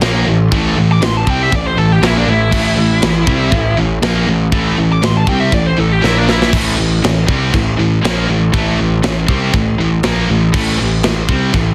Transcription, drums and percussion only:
0.01 snare, china
0.52 kick, china
1.02 snare, china
1.27 kick
1.52 kick, china
2.03 snare, china
2.52 kick, crash, china
3.02 snare, china
3.27 kick
3.52 kick, china
4.02 snare, china
4.52 kick, china
5.03 snare, china
5.27 kick
5.52 kick, china
6.04 snare
6.29 snare
6.42 snare
6.53 kick, crash, china
7.04 snare, china
7.28 kick
7.54 kick, china
8.05 snare, china
8.54 kick, china
9.03 snare, china
9.28 kick
9.54 kick, china
10.03 snare, china
10.54 kick, crash, china
11.03 snare, china
11.29 kick
11.54 kick, china

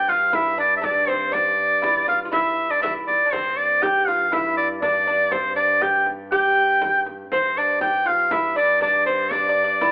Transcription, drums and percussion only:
0.08 frame drum
0.33 frame drum
0.83 frame drum
1.08 frame drum
1.34 frame drum
1.83 frame drum
2.08 frame drum
2.33 frame drum
2.83 frame drum
3.08 frame drum
3.33 frame drum
3.83 frame drum
4.08 frame drum
4.33 frame drum
4.82 frame drum
5.07 frame drum
5.31 frame drum
5.81 frame drum
6.06 frame drum
6.32 frame drum
6.81 frame drum
7.06 frame drum
7.32 frame drum
7.81 frame drum
8.06 frame drum
8.31 frame drum
8.81 frame drum
9.06 frame drum
9.31 frame drum
9.81 frame drum

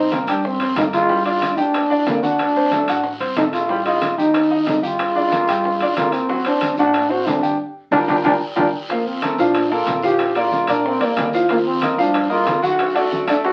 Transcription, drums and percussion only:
0.11 high bongo, high conga, high timbale, low timbale, short guiro
0.27 high conga, high timbale, short guiro
0.43 high bongo, high conga, long guiro
0.59 high bongo, high conga, high timbale
0.76 high bongo, low bongo, high conga, high timbale, low timbale, short guiro
0.92 high conga, high timbale, short guiro
1.09 high bongo, long guiro
1.25 high conga, high timbale
1.41 high bongo, high conga, high timbale, low timbale, short guiro
1.57 high bongo, short guiro
1.73 high bongo, high conga, high timbale, long guiro
1.90 high bongo, high conga
2.06 high bongo, low bongo, high conga, high timbale, low timbale, short guiro
2.22 high conga, short guiro
2.38 high bongo, high conga, high timbale, long guiro
2.55 high bongo, high conga
2.71 high bongo, high conga, high timbale, low timbale, short guiro
2.87 high bongo, high conga, high timbale, short guiro
3.04 high bongo, high conga, long guiro
3.20 high bongo, high conga, high timbale
3.36 high bongo, low bongo, high conga, high timbale, low timbale, short guiro
3.53 high timbale, short guiro
3.69 high bongo, high conga, long guiro
3.85 high bongo, high conga, high timbale
4.01 high bongo, high conga, high timbale, low timbale, short guiro
4.18 high bongo, short guiro
4.34 high bongo, high conga, high timbale, long guiro
4.50 high bongo, high conga
4.67 high bongo, low bongo, high conga, high timbale, low timbale, short guiro
4.83 high conga, short guiro
4.99 high bongo, high timbale, long guiro
5.15 high bongo, high conga
5.32 high bongo, high conga, high timbale, low timbale, short guiro
5.48 high bongo, high conga, high timbale, short guiro
5.64 high bongo, high conga, long guiro
5.80 high conga, high timbale
5.97 high bongo, low bongo, high conga, high timbale, low timbale, short guiro
6.12 high timbale, short guiro
6.29 high bongo, high conga, long guiro
6.45 high bongo, high conga, high timbale
6.61 high bongo, high conga, high timbale, low timbale, short guiro
6.77 high bongo, short guiro
6.94 high bongo, high conga, high timbale, long guiro
7.10 high bongo, high conga
7.26 high bongo, low bongo, high conga, high timbale, low timbale, short guiro
7.43 high conga, short guiro
7.92 low bongo, high conga, high timbale, long guiro
8.08 low bongo, high conga, high timbale, long guiro
8.24 low bongo, high conga, high timbale, long guiro
8.56 low bongo, high conga, high timbale, long guiro
8.90 high bongo, high conga, high timbale, long guiro
9.06 high conga
9.22 high bongo, high conga, high timbale, short guiro
9.38 short guiro
9.53 high bongo, high conga, low conga, high timbale, long guiro
9.70 high conga
9.86 high bongo, low bongo, high conga, high timbale, low timbale, short guiro
10.03 high conga, short guiro
10.19 high bongo, high conga, high timbale, long guiro
10.35 high bongo, high conga, high timbale
10.52 high bongo, high conga, short guiro
10.67 high bongo, high timbale, short guiro
10.84 high bongo, high conga, long guiro
11.01 high conga, high timbale
11.17 high bongo, low bongo, high conga, high timbale, low timbale, short guiro
11.33 high bongo, high conga, short guiro
11.49 high bongo, high conga, high timbale, long guiro
11.66 high conga
11.82 high bongo, high conga, high timbale, short guiro
11.99 high conga, short guiro
12.14 high bongo, high conga, low conga, high timbale, long guiro
12.31 high conga
12.47 high bongo, low bongo, high conga, high timbale, low timbale, short guiro
12.63 high conga, short guiro
12.79 high bongo, high timbale, long guiro
12.96 high bongo, high conga, high timbale
13.12 high bongo, high conga, short guiro
13.27 high bongo, high timbale, short guiro
13.44 high bongo, high conga, long guiro

